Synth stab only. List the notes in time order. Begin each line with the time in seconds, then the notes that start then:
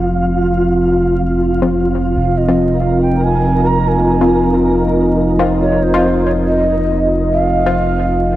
1.62 F3 C4 F4
2.48 F3 C4 F4
4.21 F3 C4 F4
5.39 F3 C4 F4
5.94 F3 C4 F4
7.66 F3 C4 F4